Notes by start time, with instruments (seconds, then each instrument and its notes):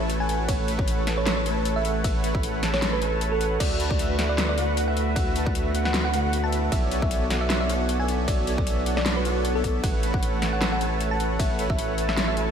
Already playing: sub bass A1, supersaw synth A3 A4 B4 C#5 A5, ambient pad A3 E4 F#4 C#5
0.10 closed hi-hat
0.20 supersaw synth A3 A4 B4 C#5 F#5, synth pluck G#5
0.29 supersaw synth A3 A4 B4 C#5 F#5, closed hi-hat
0.48 supersaw synth A3 A4 B4 C#5 F#5, ambient pad G#4, synth pluck C#5, kick, closed hi-hat, ride
0.68 supersaw synth A3 A4 B4 C#5 B5, closed hi-hat
0.79 synth pluck C#5, kick
0.87 supersaw synth A3 A4 B4 C#5 F#5, closed hi-hat
1.07 supersaw synth A3 A4 B4 C#5 A5, snare, closed hi-hat
1.18 synth pluck C#5
1.26 supersaw synth A3 A4 B4 C#5 A5, snare, closed hi-hat, ride
1.37 synth pluck C#5
1.46 supersaw synth A3 A4 B4 C#5 A5, closed hi-hat
1.65 closed hi-hat
1.76 supersaw synth A3 A4 B4 C#5 F#5, synth pluck E5
1.85 supersaw synth A3 A4 B4 C#5 F#5, closed hi-hat
2.04 supersaw synth A3 A4 B4 C#5 F#5, synth pluck E5, kick, closed hi-hat, ride
2.24 supersaw synth A3 A4 B4 C#5 B5, closed hi-hat
2.35 synth pluck E5, kick
2.43 supersaw synth A3 A4 B4 C#5 F#5, closed hi-hat
2.63 supersaw synth A3 A4 B4 C#5 A5, snare, closed hi-hat
2.74 synth pluck C#5, snare
2.82 supersaw synth A3 A4 B4 C#5 A5, snare, closed hi-hat, ride
2.93 synth pluck B4
3.02 supersaw synth A3 A4 B4 C#5 A5, closed hi-hat
3.21 closed hi-hat
3.32 supersaw synth A3 A4 B4 C#5 F#5, synth pluck A4
3.41 supersaw synth A3 A4 B4 C#5 F#5, closed hi-hat
3.60 sub bass D2, supersaw synth D3 A3 F#4 B4 E5, ambient pad B3 E4 F#4 D5, synth pluck D5, kick, closed hi-hat, crash, ride
3.80 supersaw synth D3 A3 F#4 B4 A5, closed hi-hat
3.90 synth pluck D5, kick
3.99 supersaw synth D3 A3 F#4 B4 E5, closed hi-hat
4.19 supersaw synth D3 A3 F#4 B4 F#5, snare, closed hi-hat
4.29 synth pluck D5
4.38 supersaw synth D3 A3 F#4 B4 F#5, snare, closed hi-hat, ride
4.49 synth pluck D5
4.58 supersaw synth D3 A3 F#4 B4 F#5, closed hi-hat
4.77 closed hi-hat
4.88 supersaw synth D3 A3 F#4 B4 E5, synth pluck F#5
4.97 supersaw synth D3 A3 F#4 B4 E5, closed hi-hat
5.16 supersaw synth D3 A3 F#4 B4 E5, synth pluck F#5, kick, closed hi-hat, ride
5.36 supersaw synth D3 A3 F#4 B4 A5, closed hi-hat
5.46 synth pluck F#5, kick
5.55 supersaw synth D3 A3 F#4 B4 E5, closed hi-hat
5.75 supersaw synth D3 A3 F#4 B4 F#5, closed hi-hat
5.85 synth pluck F#5, snare
5.94 supersaw synth D3 A3 F#4 B4 F#5, snare, closed hi-hat, ride
6.05 synth pluck F#5
6.14 supersaw synth D3 A3 F#4 B4 F#5, closed hi-hat
6.33 closed hi-hat
6.44 supersaw synth D3 A3 F#4 B4 E5, synth pluck A5
6.52 supersaw synth D3 A3 F#4 B4 E5, closed hi-hat
6.72 sub bass B1, ambient pad A3 D4 C#5, supersaw synth B3 F#4 A4 C#5 D5 E5, synth pluck E5, kick, closed hi-hat, ride
6.91 supersaw synth B3 F#4 A4 C#5 D5 G#5, closed hi-hat
7.02 synth pluck E5, kick
7.11 supersaw synth B3 F#4 A4 C#5 D5 E5, closed hi-hat
7.30 supersaw synth B3 F#4 A4 C#5 D5 F#5, snare, closed hi-hat
7.41 synth pluck E5
7.50 supersaw synth B3 F#4 A4 C#5 D5 F#5, snare, closed hi-hat, ride
7.61 synth pluck E5
7.69 supersaw synth B3 F#4 A4 C#5 D5 F#5, closed hi-hat
7.89 closed hi-hat
8.00 supersaw synth B3 F#4 A4 C#5 D5 E5, synth pluck G#5
8.08 supersaw synth B3 F#4 A4 C#5 D5 E5, closed hi-hat
8.28 supersaw synth B3 F#4 A4 C#5 D5 E5, synth pluck D5, kick, closed hi-hat, ride
8.47 supersaw synth B3 F#4 A4 C#5 D5 G#5, closed hi-hat
8.58 synth pluck D5, kick
8.67 supersaw synth B3 F#4 A4 C#5 D5 E5, closed hi-hat
8.86 supersaw synth B3 F#4 A4 C#5 D5 F#5, closed hi-hat
8.97 synth pluck D5, snare
9.06 supersaw synth B3 F#4 A4 C#5 D5 F#5, snare, closed hi-hat, ride
9.17 synth pluck B4
9.25 supersaw synth B3 F#4 A4 C#5 D5 F#5, closed hi-hat
9.45 closed hi-hat
9.55 supersaw synth B3 F#4 A4 C#5 D5 E5, synth pluck A4
9.64 supersaw synth B3 F#4 A4 C#5 D5 E5, kick, closed hi-hat
9.84 sub bass A1, supersaw synth A3 A4 B4 C#5 F#5, ambient pad F#4, synth pluck F#5, kick, closed hi-hat, ride
10.03 supersaw synth A3 A4 B4 C#5 B5, closed hi-hat
10.14 synth pluck F#5, kick
10.22 supersaw synth A3 A4 B4 C#5 F#5, closed hi-hat
10.42 supersaw synth A3 A4 B4 C#5 A5, snare, closed hi-hat
10.53 synth pluck F#5
10.62 supersaw synth A3 A4 B4 C#5 A5, snare, closed hi-hat, ride
10.72 synth pluck F#5
10.81 supersaw synth A3 A4 B4 C#5 A5, closed hi-hat
11.01 closed hi-hat
11.11 supersaw synth A3 A4 B4 C#5 F#5, synth pluck A5
11.20 supersaw synth A3 A4 B4 C#5 F#5, closed hi-hat
11.39 supersaw synth A3 A4 B4 C#5 F#5, synth pluck E5, kick, closed hi-hat, ride
11.59 supersaw synth A3 A4 B4 C#5 B5, closed hi-hat
11.70 synth pluck E5, kick
11.78 supersaw synth A3 A4 B4 C#5 F#5, closed hi-hat
11.98 supersaw synth A3 A4 B4 C#5 A5, closed hi-hat
12.09 synth pluck E5, snare
12.17 supersaw synth A3 A4 B4 C#5 A5, snare, closed hi-hat, ride
12.28 synth pluck E5
12.37 supersaw synth A3 A4 B4 C#5 A5, closed hi-hat